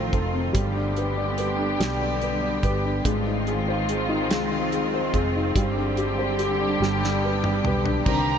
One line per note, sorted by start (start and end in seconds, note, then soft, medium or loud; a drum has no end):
0.00 0.52 D#3 medium
0.00 0.57 F3 medium
0.00 0.52 A3 medium
0.00 0.34 C4 soft
0.00 0.52 C4 medium
0.00 0.52 F4 medium
0.00 0.14 A4 soft
0.00 0.57 C5 medium
0.13 0.52 F1 medium
0.13 0.54 A4 soft
0.13 kick medium
0.13 closed hi-hat soft
0.34 0.54 C4 soft
0.53 1.76 G1 medium
0.53 3.02 D3 medium
0.53 1.78 G3 medium
0.53 3.02 G3 medium
0.53 3.02 B3 medium
0.53 3.02 G4 medium
0.53 kick medium
0.53 closed hi-hat medium
0.76 1.57 D4 soft
0.96 1.36 B4 soft
0.96 closed hi-hat soft
1.17 2.41 D5 soft
1.38 2.21 B4 soft
1.38 closed hi-hat soft
1.59 2.00 D4 medium
1.80 2.59 B1 medium
1.80 3.01 G3 medium
1.80 snare loud
1.80 closed hi-hat medium
2.01 2.83 D4 soft
2.22 2.62 B4 soft
2.22 closed hi-hat soft
2.42 3.03 D5 soft
2.63 3.03 G1 medium
2.63 3.04 B4 medium
2.63 kick medium
2.63 closed hi-hat soft
2.85 3.05 D4 soft
3.04 4.30 G#1 medium
3.04 5.53 D#3 medium
3.04 5.53 G#3 medium
3.04 4.29 G#3 medium
3.04 6.76 C4 medium
3.04 5.53 F4 medium
3.04 kick medium
3.04 closed hi-hat medium
3.26 4.08 D#4 soft
3.47 3.88 G#4 soft
3.47 closed hi-hat soft
3.68 4.93 C5 medium
3.89 4.71 G#4 soft
3.89 closed hi-hat medium
4.09 4.50 D#4 medium
4.30 5.09 C2 medium
4.30 5.52 G#3 medium
4.30 snare loud
4.30 closed hi-hat medium
4.51 5.35 D#4 soft
4.72 5.13 G#4 soft
4.72 closed hi-hat soft
4.94 5.54 C5 medium
5.13 5.53 F1 medium
5.13 5.54 G#4 soft
5.13 kick medium
5.13 closed hi-hat soft
5.36 5.56 D#4 soft
5.55 6.77 G1 medium
5.55 8.03 D3 medium
5.55 8.03 G3 medium
5.55 6.77 G3 medium
5.55 8.03 G4 medium
5.55 kick medium
5.55 closed hi-hat medium
5.77 6.58 D4 soft
5.97 6.38 G4 medium
5.97 closed hi-hat soft
6.18 6.79 C5 medium
6.39 6.80 G4 medium
6.39 closed hi-hat medium
6.60 6.80 D4 medium
6.80 7.60 G1 medium
6.80 8.03 G3 medium
6.80 8.05 B3 medium
6.80 snare soft
7.03 7.85 D4 medium
7.03 snare medium
7.24 7.65 B4 soft
7.44 8.05 D5 soft
7.44 mid tom medium
7.64 8.03 B1 medium
7.64 8.06 B4 medium
7.64 mid tom medium
7.86 8.06 D4 medium
7.86 floor tom medium
8.06 8.38 C2 loud
8.06 8.38 C3 medium
8.06 8.38 D3 medium
8.06 8.38 D#3 medium
8.06 8.38 C4 medium
8.06 8.38 C4 soft
8.06 8.38 G4 medium
8.06 8.38 A#5 medium
8.06 kick loud
8.06 crash medium